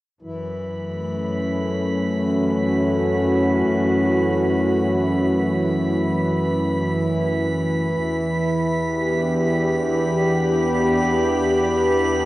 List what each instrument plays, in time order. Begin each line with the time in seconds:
0.21 double bass section F#2, analog synth pad E3, harmonium E3, synth texture B5
0.76 analog synth pad A3
1.10 analog synth pad C#4
2.01 analog synth pad F#4
8.01 double bass section E2
8.81 analog synth pad B3
8.85 analog synth pad G4
9.01 analog synth pad D4